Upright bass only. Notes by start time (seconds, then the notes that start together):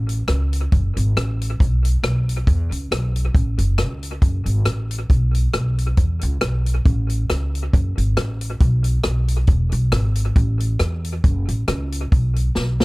Already playing: A1
0.29 C#2
0.73 F#1
0.97 G#1
1.17 A1
1.61 B1
2.03 B1
2.47 E2
2.71 C#2
2.91 B1
3.35 A1
3.58 F#1
3.79 C#2
4.22 F#1
4.46 G#1
4.66 A1
5.10 B1
5.54 B1
5.98 E2
6.23 C#2
6.42 B1
6.86 A1
7.31 C#2
7.74 F#1
7.98 G#1
8.18 A1
8.61 B1
9.05 B1
9.48 E1
9.72 B1
9.92 G#1
10.36 A1
10.80 E2
11.24 F#1
11.48 A1
11.68 C#2
12.12 B1
12.57 B1